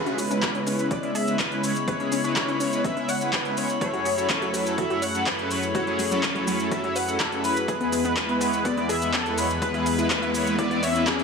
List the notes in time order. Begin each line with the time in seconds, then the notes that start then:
Already playing: C#3 G#3 B3 E4 B4 C#5 B5
0.06 G#3 C#4 E4 G#4, closed hi-hat
0.18 C#4, open hi-hat, shaker
0.31 G#3 C#4 E4 B4, closed hi-hat, shaker
0.42 G#3 C#4 E4 B4, kick, clap, closed hi-hat, shaker
0.55 C#4, closed hi-hat
0.67 G#3 C#4 E4 C#5, open hi-hat, shaker
0.79 G#3 C#4 E4 B4, closed hi-hat, shaker
0.91 G#3 C#4 E4 B4 D5, kick, closed hi-hat, shaker
1.03 G#3 C#4 E4 E5, closed hi-hat
1.15 G#4 E5, open hi-hat, shaker
1.27 G#3 C#4 E4 B4, closed hi-hat, shaker
1.39 B4, kick, clap, closed hi-hat, shaker
1.52 G#3 C#4 E4 B4, closed hi-hat
1.63 G#3 C#4 E4 C#5, open hi-hat, shaker
1.76 closed hi-hat, shaker
1.88 G#3 C#4 E4 B4 C#5, kick, closed hi-hat, shaker
2.00 G#3 C#4 E4 G#4, closed hi-hat
2.12 C#4, open hi-hat, shaker
2.24 G#3 C#4 E4 B4, closed hi-hat, shaker
2.36 kick, clap, closed hi-hat, shaker
2.48 C#4, closed hi-hat
2.60 G#3 C#4 E4 C#5, open hi-hat, shaker
2.73 G#3 C#4 E4 B4, shaker
2.84 G#3 C#4 E4 B4 E5, kick, closed hi-hat, shaker
2.97 G#3 C#4 E4 E5, closed hi-hat
3.09 C#5 F#5, open hi-hat, shaker
3.21 G#3 C#4 E4 B4, closed hi-hat, shaker
3.33 B4, kick, clap, closed hi-hat, shaker
3.45 G#3 C#4 E4 B4, closed hi-hat
3.57 G#3 C#4 E4 C#5, open hi-hat, shaker
3.69 closed hi-hat, shaker
3.81 F#2 F#3 A3 C#4 E4 G#4 A4 C#5, kick, closed hi-hat, shaker
3.94 F#3 C#4 E4 F#4 G#4, closed hi-hat
4.05 F#4, open hi-hat, shaker
4.18 F#3 C#4 E4 F#4 A4, closed hi-hat, shaker
4.30 F#3 C#4 A4, kick, clap, closed hi-hat, shaker
4.42 F#4, closed hi-hat
4.54 F#3 C#4 E4 F#4 B4, open hi-hat, shaker
4.66 F#3 C#4 E4 A4, closed hi-hat, shaker
4.78 F#3 C#4 E4 F#4 A4 E5, kick, closed hi-hat, shaker
4.90 F#3 C#4 E4 F#4 C#5, closed hi-hat
5.02 C#5 F#5, open hi-hat, shaker
5.14 F#3 C#4 E4 A4, closed hi-hat, shaker
5.26 B4, kick, clap, closed hi-hat, shaker
5.39 F#3 C#4 E4 A4, closed hi-hat
5.50 F#3 C#4 E4 B4 C#5, open hi-hat, shaker
5.63 closed hi-hat, shaker
5.75 F#3 C#4 E4 F#4 A4 C#5, kick, closed hi-hat, shaker
5.87 F#3 C#4 E4 G#4, closed hi-hat
5.99 F#3, open hi-hat, shaker
6.11 F#3 C#4 E4 A4, closed hi-hat, shaker
6.23 F#3 C#4 E4 A4, kick, clap, closed hi-hat, shaker
6.35 F#3, closed hi-hat
6.47 F#3 C#4 E4 B4, open hi-hat, shaker
6.60 F#3 C#4 E4 A4, closed hi-hat, shaker
6.71 F#3 C#4 E4 A4 E5, kick, closed hi-hat, shaker
6.84 F#3 C#4 E4 C#5, closed hi-hat
6.96 B4 F#5, open hi-hat, shaker
7.08 F#3 C#4 E4 A4, closed hi-hat, shaker
7.20 A4, kick, clap, closed hi-hat, shaker
7.32 F#3 C#4 E4 A4, closed hi-hat
7.44 F#3 C#4 E4 B4, open hi-hat, shaker
7.56 closed hi-hat, shaker
7.68 E2 E3 G#3 B3 E4 G#4 B4, kick, closed hi-hat, riser, shaker
7.81 G#3 B3 E4 G#4, closed hi-hat
7.92 B3, open hi-hat, shaker
8.05 G#3 B3 E4 B4, closed hi-hat, shaker
8.17 G#3 B3 B4, kick, clap, closed hi-hat, shaker
8.29 B3, closed hi-hat
8.41 G#3 B3 E4 C#5, open hi-hat, shaker
8.53 G#3 B3 E4 B4, shaker
8.65 G#3 B3 E4 B4 D5, kick, closed hi-hat, shaker
8.77 G#3 B3 E4 D5, closed hi-hat
8.89 G#4 E5, open hi-hat, shaker
9.02 G#3 B3 E4 B4, closed hi-hat, shaker
9.13 A4, kick, clap, closed hi-hat, shaker
9.26 G#3 B3 E4 B4, closed hi-hat
9.38 G#3 B3 E4 B4 C#5, open hi-hat, shaker
9.50 closed hi-hat, shaker
9.62 G#3 B3 E4 B4, kick, closed hi-hat, shaker
9.74 G#3 B3 E4 G#4, closed hi-hat
9.86 E4, open hi-hat, shaker
9.98 G#3 B3 E4 B4, closed hi-hat, shaker
10.10 G#3 B3 E4 B4, kick, clap, closed hi-hat, shaker
10.23 E4, closed hi-hat
10.34 G#3 B3 E4 C#5, open hi-hat, shaker
10.47 G#3 B3 E4 B4, closed hi-hat, shaker
10.59 G#3 B3 E4 B4 D5, kick, closed hi-hat, shaker
10.71 G#3 B3 E4 D5, closed hi-hat
10.83 C#5 E5, open hi-hat, shaker
10.95 G#3 B3 E4 B4, shaker
11.07 G#4, kick, clap, closed hi-hat, shaker
11.19 G#3 B3 E4 B4, closed hi-hat